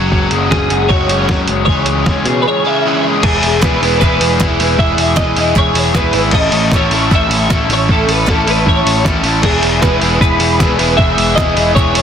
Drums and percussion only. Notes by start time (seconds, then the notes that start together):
0.12 kick
0.31 closed hi-hat
0.51 kick, snare
0.70 closed hi-hat
0.90 kick
1.09 closed hi-hat
1.29 kick, snare
1.48 closed hi-hat
1.68 kick
1.86 closed hi-hat
2.06 kick, snare
2.25 closed hi-hat
3.23 kick, crash
3.43 open hi-hat
3.62 kick, snare, clap
3.83 open hi-hat
4.02 kick, clap
4.21 open hi-hat
4.40 kick, snare, clap
4.60 open hi-hat
4.79 kick
4.98 open hi-hat
5.17 kick, snare, clap
5.37 open hi-hat
5.56 kick, clap
5.75 open hi-hat
5.95 kick, snare, clap
6.13 snare, open hi-hat
6.31 kick, crash
6.52 open hi-hat
6.72 kick, snare, clap
6.91 open hi-hat
7.11 kick, clap
7.31 open hi-hat
7.50 kick, snare, clap
7.70 snare, open hi-hat
7.89 kick
8.09 open hi-hat
8.27 kick, snare, clap
8.48 open hi-hat
8.67 kick
8.87 open hi-hat
9.05 kick, snare, clap
9.24 open hi-hat
9.43 kick, crash
9.63 open hi-hat
9.82 kick, snare, clap
10.02 open hi-hat
10.21 kick, clap
10.40 open hi-hat
10.60 kick, snare, clap
10.79 open hi-hat
10.99 kick
11.18 open hi-hat
11.38 kick, snare, clap
11.57 open hi-hat
11.76 kick, clap
11.95 open hi-hat